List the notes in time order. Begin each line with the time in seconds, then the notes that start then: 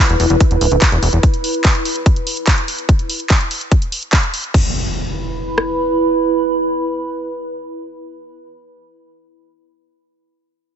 Already playing: E4 B4 B5
0.09 E1, closed hi-hat
0.20 E1, open hi-hat
0.30 E1, closed hi-hat
0.40 kick, closed hi-hat
0.51 E1, closed hi-hat
0.61 D1, open hi-hat
0.72 D1, closed hi-hat
0.82 kick, clap, closed hi-hat
0.92 E1, closed hi-hat
1.03 E1, open hi-hat
1.13 E1, closed hi-hat
1.23 kick, closed hi-hat
1.34 closed hi-hat
1.44 open hi-hat
1.54 closed hi-hat
1.65 kick, clap, closed hi-hat
1.75 closed hi-hat
1.85 open hi-hat
1.96 closed hi-hat
2.06 kick, closed hi-hat
2.16 closed hi-hat
2.27 open hi-hat
2.37 closed hi-hat
2.47 kick, clap, closed hi-hat
2.58 closed hi-hat
2.68 open hi-hat
2.78 closed hi-hat
2.89 kick, closed hi-hat
2.99 closed hi-hat
3.09 open hi-hat
3.20 closed hi-hat
3.30 kick, clap, closed hi-hat
3.41 closed hi-hat
3.51 open hi-hat
3.61 closed hi-hat
3.72 kick, closed hi-hat
3.82 closed hi-hat
3.92 open hi-hat
4.03 closed hi-hat
4.13 kick, clap, closed hi-hat
4.23 closed hi-hat
4.34 open hi-hat
4.44 closed hi-hat
4.54 E4, kick, crash, impact
4.61 B4
4.67 B5
5.58 cross-stick